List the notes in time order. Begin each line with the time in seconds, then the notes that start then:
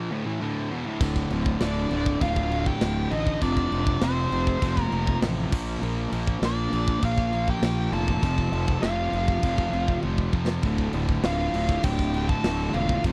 Already playing: F3 A#3
0.11 D2 A2
0.25 A2 E3
0.40 D2 A2 D3
0.71 E2 B2
0.86 D2 A2
1.00 D1 D2 A2 D3, kick, crash
1.16 kick
1.31 D1 D2 A2 D3, crash
1.46 kick
1.60 D1 D2 A2 D3 D4 D5, snare, crash
1.91 D1 D2 A2 D3, crash
2.06 kick
2.21 D1 D2 A2 D3 F4 F5, kick, crash
2.36 kick
2.51 D2 A2 D3, crash
2.66 G4 G5, kick
2.81 D1 D2 A2 D3, snare, crash
3.11 A1 D2 A2 D3 D#4 D#5, crash
3.27 kick
3.42 F1 F2 C3 F3 D4 D5, kick, crash
3.57 kick
3.72 F1 F2 C3 F3, crash
3.87 kick
4.01 F1 F2 C3 F3 C4 C5, snare, crash
4.31 F1 F2 C3 F3, crash
4.47 kick
4.62 F1 F2 C3 F3, kick, crash
4.77 kick
4.82 A#3 A#4
4.91 F1 F2 C3 F3, crash
5.07 kick
5.22 A1 F2 C3 F3, snare, crash
5.52 A#1 A#2 F3 A#3, kick, crash
5.82 A#1 A#2 F3 A#3, crash
6.11 A#1 A#2 F3 A#3, crash
6.27 kick
6.42 A#1 A#2 F3 A#3 D4 D5, snare, crash
6.72 A#1 A#2 F3 A#3, crash
6.88 kick
7.03 A#1 A#2 F3 A#3 F4 F5, kick, crash
7.18 kick
7.33 A#2 F3 A#3, crash
7.48 G4 G5, kick
7.62 A#1 A#2 F3 A#3, snare, crash
7.92 F1 A#2 F3 A#3 A4 A5, crash
8.08 kick
8.23 F1 F2 C3 F3 A4 A5, kick, crash
8.38 kick
8.52 F1 F2 C3 F3, crash
8.68 kick
8.82 F1 F2 C3 F3 F4 F5, snare, crash
9.12 F1 F2 C3 F3, crash
9.28 kick
9.43 F1 F2 C3 F3, kick, crash
9.58 kick
9.73 F1 F2 C3 F3, crash
9.88 kick
10.03 F1 F2 C3 F3, high tom
10.18 kick
10.33 F2 C3 F3, kick
10.48 snare
10.63 D1 D2 A2 D3, kick, crash
10.78 kick
10.93 D1 D2 A2 D3, crash
11.09 kick
11.23 D1 D2 A2 D3 F4 F5, snare, crash
11.53 D1 D2 A2 D3, crash
11.69 kick
11.83 D1 D2 A2 D3 G4 G5, kick, crash
11.99 kick
12.14 D2 A2 D3, crash
12.28 A4 A5, kick
12.44 D1 D2 A2 D3, snare, crash
12.74 E1 D2 A2 D3 F4 F5, crash
12.89 kick
13.04 F1 F2 C3 F3, kick, crash